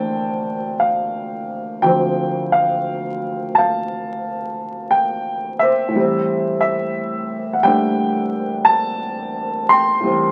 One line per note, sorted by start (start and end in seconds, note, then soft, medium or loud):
0.00 1.81 D2 medium
0.00 1.82 D3 soft
0.00 1.85 E3 soft
0.00 1.84 F3 soft
0.00 1.86 A3 soft
0.00 1.86 C4 medium
0.00 1.87 D4 soft
0.00 1.82 C5 medium
0.00 1.82 G5 medium
0.00 3.55 A5 medium
0.80 1.88 F5 medium
1.82 5.94 D2 soft
1.82 5.94 D3 soft
1.82 5.95 F3 soft
1.82 3.88 C5 medium
1.82 2.50 G5 medium
1.87 5.96 C4 medium
2.52 3.53 F5 medium
3.55 5.59 F5 medium
3.55 4.88 A5 medium
4.91 5.63 G5 medium
5.59 7.61 C5 medium
5.59 6.59 E5 medium
5.88 9.99 A2 medium
5.93 10.01 E3 medium
5.93 7.63 G3 medium
6.00 10.04 C4 medium
6.61 7.57 E5 medium
7.53 7.64 F#5 medium
7.63 10.02 G3 soft
7.63 10.03 A3 soft
7.63 10.04 D4 soft
7.63 8.70 G5 loud
8.65 9.72 A5 loud
9.69 10.32 G5 medium
9.69 10.32 C6 loud
10.00 10.32 A2 medium
10.00 10.32 E3 soft
10.00 10.32 G3 soft
10.06 10.32 C4 medium